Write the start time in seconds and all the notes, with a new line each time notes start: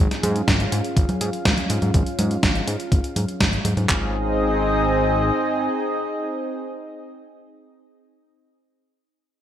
Already playing: G#4
0.00 C#4 F4 F5
0.11 snare, closed hi-hat
0.23 G#2, closed hi-hat, high conga
0.36 closed hi-hat
0.48 G#1, kick, snare, closed hi-hat
0.60 closed hi-hat
0.72 G#2, closed hi-hat
0.84 closed hi-hat
0.97 G#1, kick, closed hi-hat
1.09 closed hi-hat, high conga
1.21 G#2, closed hi-hat
1.33 closed hi-hat
1.45 G#1, kick, snare, closed hi-hat
1.58 closed hi-hat, high conga
1.70 G#2, closed hi-hat
1.82 G#2, closed hi-hat, high conga
1.94 G#1, kick, closed hi-hat
2.06 closed hi-hat
2.19 G#2, closed hi-hat, high conga
2.31 closed hi-hat
2.43 G#1, kick, snare, closed hi-hat
2.55 closed hi-hat
2.67 G#2, closed hi-hat
2.80 closed hi-hat
2.92 G#1, kick, closed hi-hat
3.04 closed hi-hat
3.16 G#2, closed hi-hat, high conga
3.28 closed hi-hat
3.40 G#1, kick, snare, closed hi-hat
3.53 closed hi-hat
3.65 G#2, closed hi-hat, high conga
3.77 G#2, closed hi-hat, high conga
3.89 G#1 C4 D#4 G#4 D#5, kick, clap